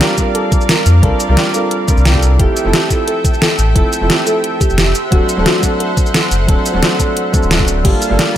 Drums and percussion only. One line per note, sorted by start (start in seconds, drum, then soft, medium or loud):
0.01 snare loud
0.01 closed hi-hat medium
0.18 kick medium
0.18 closed hi-hat medium
0.18 shaker medium
0.35 closed hi-hat loud
0.52 kick loud
0.52 closed hi-hat medium
0.52 shaker medium
0.61 shaker soft
0.69 snare loud
0.69 closed hi-hat loud
0.86 closed hi-hat medium
0.86 shaker medium
1.03 kick loud
1.03 closed hi-hat medium
1.20 closed hi-hat medium
1.20 shaker medium
1.37 snare loud
1.37 closed hi-hat medium
1.54 closed hi-hat medium
1.54 shaker medium
1.71 closed hi-hat loud
1.88 kick loud
1.88 closed hi-hat medium
1.88 shaker medium
1.97 shaker soft
2.05 snare loud
2.05 closed hi-hat medium
2.14 kick medium
2.23 closed hi-hat medium
2.23 shaker medium
2.39 kick loud
2.39 closed hi-hat medium
2.57 closed hi-hat medium
2.57 shaker medium
2.73 snare loud
2.73 closed hi-hat medium
2.90 kick medium
2.90 closed hi-hat medium
2.90 shaker medium
3.08 closed hi-hat medium
3.25 kick loud
3.25 closed hi-hat medium
3.25 shaker medium
3.34 shaker soft
3.42 snare loud
3.42 closed hi-hat medium
3.59 closed hi-hat medium
3.59 shaker medium
3.76 kick loud
3.76 closed hi-hat medium
3.93 closed hi-hat medium
3.93 shaker medium
4.10 snare loud
4.10 closed hi-hat medium
4.27 closed hi-hat medium
4.27 shaker medium
4.44 closed hi-hat medium
4.61 kick loud
4.61 closed hi-hat medium
4.61 shaker medium
4.70 shaker soft
4.78 snare loud
4.78 closed hi-hat medium
4.95 closed hi-hat medium
4.95 shaker medium
5.12 kick loud
5.12 closed hi-hat medium
5.29 closed hi-hat medium
5.29 shaker medium
5.46 snare loud
5.46 closed hi-hat medium
5.63 kick medium
5.63 closed hi-hat medium
5.63 shaker medium
5.80 closed hi-hat medium
5.97 kick loud
5.97 closed hi-hat medium
5.97 shaker medium
6.06 shaker soft
6.14 snare loud
6.14 closed hi-hat medium
6.31 closed hi-hat medium
6.31 shaker medium
6.48 kick loud
6.48 closed hi-hat loud
6.66 closed hi-hat medium
6.66 shaker medium
6.83 snare loud
6.83 closed hi-hat medium
7.00 kick medium
7.00 closed hi-hat medium
7.00 shaker medium
7.17 closed hi-hat loud
7.34 kick loud
7.34 closed hi-hat medium
7.34 shaker medium
7.43 shaker soft
7.51 snare loud
7.51 closed hi-hat medium
7.60 kick medium
7.68 closed hi-hat medium
7.68 shaker medium
7.85 kick loud
7.85 closed hi-hat loud
7.85 crash medium
8.02 closed hi-hat medium
8.02 shaker medium
8.19 snare loud
8.19 closed hi-hat medium